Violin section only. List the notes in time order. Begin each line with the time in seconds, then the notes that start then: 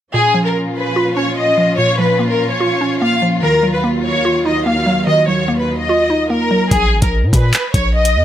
0.13 G#4
0.45 A#4
0.76 B4
1.16 C#5
1.37 D#5
1.78 C#5
1.99 B4
2.30 A#4
2.51 C#5
3.01 F5
3.42 A#4
3.74 B4
4.04 C#5
4.46 D#5
4.66 F5
5.07 D#5
5.28 C#5
5.59 B4
5.79 D#5
6.31 A#4
6.71 G#4
7.02 A#4
7.34 B4
7.74 C#5
7.95 D#5